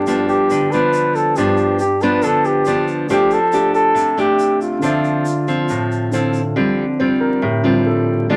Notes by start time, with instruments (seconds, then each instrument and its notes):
Already playing: nylon-string guitar G2, grand piano G3 F4 A4 B4 D5, flugelhorn G4
0.07 nylon-string guitar F3 B3 D4, shaker
0.29 flugelhorn G4, shaker
0.50 nylon-string guitar D3, shaker
0.72 nylon-string guitar F3 B3 D4, flugelhorn B4, shaker
0.93 shaker
1.15 flugelhorn A4, shaker
1.36 nylon-string guitar G2 F3 B3 D4, flugelhorn G4, shaker
1.57 shaker
1.79 flugelhorn G4, shaker
2.01 nylon-string guitar F3 B3 D4, flugelhorn B4, shaker
2.22 nylon-string guitar D3, flugelhorn A4, shaker
2.44 flugelhorn G4, shaker
2.65 nylon-string guitar F3 B3 D4, shaker
2.87 shaker
3.07 grand piano F3 G4 A4, nylon-string guitar F3 A3 D4 G4, shaker
3.11 flugelhorn G4, grand piano C5 D5
3.31 flugelhorn A4, shaker
3.52 nylon-string guitar A3 D4 G4, shaker
3.74 flugelhorn A4, shaker
3.95 nylon-string guitar C3, shaker
4.17 nylon-string guitar A3 D4 G4, flugelhorn G4, shaker
4.39 shaker
4.61 flugelhorn F4, shaker
4.79 grand piano D3 A4, nylon-string guitar D3 F3, shaker
4.83 nylon-string guitar C4, grand piano C5 E5
5.04 shaker
5.25 shaker
5.48 nylon-string guitar F3 C4, shaker
5.68 nylon-string guitar A2, shaker
5.91 shaker
6.11 grand piano D3 F4 A4 C5 F5, nylon-string guitar F3 C4 E4, shaker
6.33 shaker
6.56 grand piano D3 F3 C4, nylon-string guitar D3 G3 C4 F4
6.99 nylon-string guitar G3 C4 F4, grand piano C5
7.20 grand piano A#4
7.42 nylon-string guitar A2, grand piano G4
7.63 grand piano D3 F3 C4, nylon-string guitar G3 C4 F4
7.86 grand piano A4
8.30 nylon-string guitar D3 G#3 B3 F4, grand piano D5